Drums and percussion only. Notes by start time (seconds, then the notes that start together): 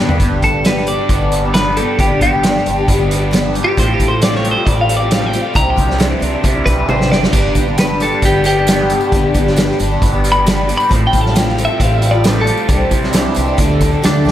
0.09 floor tom, tambourine
0.20 kick, closed hi-hat
0.42 kick, closed hi-hat
0.65 snare, closed hi-hat
0.77 snare
0.87 closed hi-hat
1.09 kick, closed hi-hat
1.32 closed hi-hat
1.54 snare, closed hi-hat
1.77 closed hi-hat
1.99 kick, closed hi-hat
2.21 kick, closed hi-hat
2.43 snare, closed hi-hat
2.56 snare
2.66 closed hi-hat
2.88 kick, closed hi-hat
3.11 closed hi-hat
3.33 snare, closed hi-hat
3.55 closed hi-hat
3.77 kick, closed hi-hat
4.00 kick, closed hi-hat
4.22 snare, closed hi-hat
4.35 snare
4.45 closed hi-hat
4.67 kick, closed hi-hat
4.89 closed hi-hat
5.11 snare, closed hi-hat
5.33 closed hi-hat
5.55 kick, closed hi-hat
5.78 kick, closed hi-hat
5.90 snare
6.00 snare, closed hi-hat
6.22 closed hi-hat
6.44 kick, closed hi-hat
6.66 kick, closed hi-hat
6.89 high tom
7.01 snare
7.12 snare
7.23 snare
7.33 kick, closed hi-hat, tambourine, splash
7.55 kick, closed hi-hat, tambourine
7.78 snare, closed hi-hat, tambourine
8.00 closed hi-hat, tambourine
8.22 kick, closed hi-hat, tambourine
8.33 tambourine
8.44 closed hi-hat, tambourine
8.67 snare, closed hi-hat, tambourine
8.90 closed hi-hat
9.01 tambourine
9.12 kick, closed hi-hat, tambourine
9.34 kick, closed hi-hat, tambourine
9.47 snare
9.56 snare, closed hi-hat, tambourine
9.70 snare
9.79 closed hi-hat, tambourine
10.02 kick, closed hi-hat, tambourine
10.14 tambourine
10.24 closed hi-hat, tambourine
10.46 snare, closed hi-hat, tambourine
10.58 tambourine
10.69 closed hi-hat
10.80 tambourine
10.91 kick, closed hi-hat, tambourine
11.13 kick, closed hi-hat, tambourine
11.26 snare
11.36 snare, closed hi-hat, tambourine
11.48 snare
11.58 closed hi-hat, tambourine
11.80 kick, closed hi-hat, tambourine
11.93 tambourine
12.02 closed hi-hat, tambourine
12.24 snare, closed hi-hat, tambourine
12.36 tambourine
12.47 closed hi-hat
12.57 tambourine
12.69 kick, closed hi-hat, tambourine
12.81 tambourine
12.91 kick, closed hi-hat, tambourine
13.02 snare, tambourine
13.13 snare, closed hi-hat, tambourine
13.35 closed hi-hat, tambourine
13.46 tambourine
13.57 kick, closed hi-hat, tambourine
13.69 tambourine
13.81 kick, closed hi-hat, tambourine
13.92 tambourine
14.04 snare, closed hi-hat, tambourine
14.15 tambourine
14.26 snare, tambourine